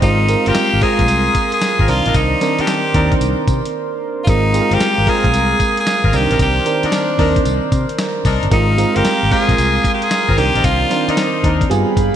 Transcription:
Already playing: C5 C6
0.01 G#1 G#3 C4 D#4 F4 A#4 F5 A#5, kick, closed hi-hat, tambourine
0.28 G#3 C4 F4 A#4, closed hi-hat, tambourine
0.46 G1 C4 F4 G4 A#4, closed hi-hat
0.55 muted fingered electric bass stroke, snare, closed hi-hat, tambourine
0.73 G#1
0.81 G#3 C4 F4 G#4 A#4, kick, open hi-hat
0.99 A#1, kick, closed hi-hat
1.08 C2, closed hi-hat, tambourine
1.35 kick, closed hi-hat, tambourine
1.52 G#4, closed hi-hat
1.61 snare, closed hi-hat, tambourine
1.79 G#1 C4 F4 A#4, kick
1.88 C2 D#3 C4 D4 F4 A#4 C5 D5, open hi-hat, tambourine
2.06 A#1 D4 D#4 A#4, closed hi-hat
2.14 C2 D#4, kick, closed hi-hat, tambourine
2.41 D#3 C4 D4 A#4, snare, closed hi-hat, tambourine
2.59 D4 D#4 G4 A#4, muted fingered electric bass stroke, closed hi-hat
2.67 snare, closed hi-hat, tambourine
2.94 D#2 D#3 C4 D4 D#4 A#4, kick, closed hi-hat
3.12 kick, closed hi-hat
3.21 C2, closed hi-hat, tambourine
3.48 C3, kick, closed hi-hat, tambourine
3.65 closed hi-hat
4.24 G#1 G#3 C4 F4 F5 A#5, kick, closed hi-hat, tambourine
4.28 D#4 F4 A#4
4.54 G#3 C4 F4 G#4, closed hi-hat, tambourine
4.61 A#4
4.71 G1 C4 F4 G4 A#4, closed hi-hat
4.80 muted fingered electric bass stroke, snare, closed hi-hat, tambourine
4.98 G#1
5.06 G#3 C4 F4 G#4 A#4, kick, open hi-hat
5.24 A#1, kick, closed hi-hat
5.34 C2, closed hi-hat, tambourine
5.60 kick, closed hi-hat, tambourine
5.77 G#4, closed hi-hat
5.87 snare, closed hi-hat, tambourine
6.03 G#1 C4 F4 A#4, kick
6.12 C2 D3 C4 D4 G4 A#4 C5 D5, open hi-hat, tambourine
6.19 D#3
6.30 A#1 D4 D#4 A#4, closed hi-hat
6.39 C2 G4, kick, closed hi-hat, tambourine
6.66 D#3 C4 D4 A#4, closed hi-hat, tambourine
6.83 D4 D#4 A#4, muted fingered electric bass stroke, closed hi-hat
6.92 snare, closed hi-hat, tambourine
7.18 D#2 D#3 C4 D4 D#4 A#4, kick, open hi-hat
7.36 kick, closed hi-hat
7.45 C2, closed hi-hat, tambourine
7.72 C3, kick, closed hi-hat, tambourine
7.89 closed hi-hat
7.98 snare, closed hi-hat, tambourine
8.25 C2 D4 D#4 A#4, kick, open hi-hat, tambourine
8.43 G1, closed hi-hat
8.51 G#1 G#3 C4 D#4 F4 A#4 F5 A#5 C6, kick, closed hi-hat, tambourine
8.77 G#3 C4 F4 A#4, closed hi-hat, tambourine
8.95 G1 C4 F4 G4 A#4, closed hi-hat
9.05 muted fingered electric bass stroke, snare, closed hi-hat, tambourine
9.23 G#1
9.31 G#3 C4 F4 G#4 A#4, kick, open hi-hat
9.49 A#1, kick, closed hi-hat
9.58 C2, closed hi-hat, tambourine
9.84 kick, closed hi-hat, tambourine
9.94 G4
10.02 G#4, closed hi-hat
10.11 snare, closed hi-hat, tambourine
10.28 G#1 C4 F4 A#4, kick
10.37 C2 D#3 C4 D4 G4 A#4 C5 D5, open hi-hat, tambourine
10.55 A#1 D4 D#4 A#4, closed hi-hat
10.64 C2 F4, kick, closed hi-hat, tambourine
10.89 D#3 C4 D4 A#4, snare, closed hi-hat, tambourine
11.08 D4 D#4 A#4, muted fingered electric bass stroke, closed hi-hat
11.17 snare, closed hi-hat, tambourine
11.43 D#2 D#3 C4 D4 D#4 A#4, kick, closed hi-hat
11.61 kick, closed hi-hat
11.69 G2 G3 B3 F4 G#4 F5 G5 B5, closed hi-hat, tambourine
11.97 G2, kick, closed hi-hat, tambourine

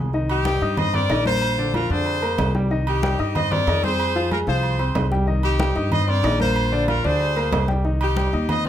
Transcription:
Already playing: C2
0.13 D#3 D#4 D#5, high conga
0.29 D#4 G4, high conga, low agogo
0.45 G3 G4 G5, high conga, low timbale, low agogo
0.61 G2 D#4 D#5 D#6
0.77 C5 D#5, high conga, low conga, low agogo
0.94 C4 A#4 C5 D5 C6, high conga, low conga, low agogo
1.09 A#1 D#3 D#4 D#5, high conga, low timbale, low agogo
1.25 A#3 F4 A#4 C5 A#5, high conga, low agogo
1.42 high conga, low agogo
1.58 D3 D4 D5, high conga
1.74 F3 F4 A#4 F5, high conga, low timbale, low agogo
1.90 F2 D3 D4 G#4 C5 D5, high conga
2.06 high conga, low agogo
2.22 A#3 A#4 A#5, high conga, low agogo
2.38 C2, high conga, low timbale, low agogo
2.55 G3 G4 G5, high conga
2.70 D#3 D#4 D#5, high conga
2.87 D#4 G4, high conga, low agogo
3.03 G3 G4 G5, high conga, low timbale, low agogo
3.19 G2 D#4 D#5 D#6
3.35 C5 D#5, high conga, low conga, low agogo
3.51 C4 A#4 C5 D5 C6, high conga, low conga, low agogo
3.67 F2 D#3 D#4 D#5, high conga, low timbale, low agogo
3.83 C4 G#4 C5 C6, high conga, low agogo
3.99 high conga, low agogo
4.15 F3 F4 F5, high conga
4.31 G#3 F4 G#4 A#4 G#5, high conga, low timbale, low agogo
4.47 C2 F3 F4 G#4 C5 F5, high conga
4.63 high conga, low agogo
4.79 C4 C5 C6, high conga, low agogo
4.95 C2, high conga, low timbale, low agogo
5.11 G3 G4 G5, high conga
5.27 D#3 D#4 D#5, high conga
5.43 D#4 G4, high conga, low agogo
5.60 G3 G4 G5, high conga, low timbale, low agogo
5.75 G2 D#4 D#5 D#6
5.92 C5 D#5, high conga, low conga, low agogo
6.08 C4 A#4 C5 D5 C6, high conga, low agogo
6.23 A#1 D#3 D#4 D#5, high conga, low timbale, low agogo
6.40 A#3 F4 A#4 C5 A#5, high conga, low agogo
6.56 low agogo
6.72 D3 D4 D5, high conga
6.88 F3 F4 A#4 F5, high conga, low timbale, low agogo
7.04 D2 D3 D4 G#4 C5 D5, high conga
7.20 high conga, low agogo
7.36 A#3 A#4 A#5, high conga, low agogo
7.52 C2, high conga, low timbale, low agogo
7.68 G3 G4 G5, high conga
7.84 D#3 D#4 D#5, high conga
8.01 D#4 G4, high conga, low agogo
8.16 G3 G4 G5, high conga, low timbale, low agogo
8.33 D#2 D#4 D#5 D#6
8.49 C5 D#5, high conga, low conga, low agogo
8.65 C4 C5, high conga, low conga, low agogo

